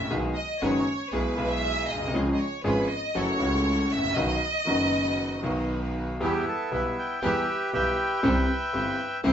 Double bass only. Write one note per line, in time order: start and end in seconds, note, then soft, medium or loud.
0.00 0.10 A1 medium
0.11 0.32 B1 medium
0.62 0.83 F#1 medium
1.12 1.33 B1 medium
1.38 1.88 B1 medium
1.89 2.13 B1 medium
2.14 2.35 C#2 medium
2.65 2.86 G#1 medium
3.15 3.36 F#1 medium
3.40 3.91 C#2 medium
3.92 4.16 A1 medium
4.17 4.38 B1 medium
4.68 5.40 F#1 medium
5.44 6.17 B1 medium
6.21 6.42 E2 loud
6.72 6.93 B1 medium
7.23 7.44 E2 medium
7.73 7.94 B1 medium
8.24 8.45 C2 loud
8.74 8.95 G1 medium
9.24 9.33 C2 loud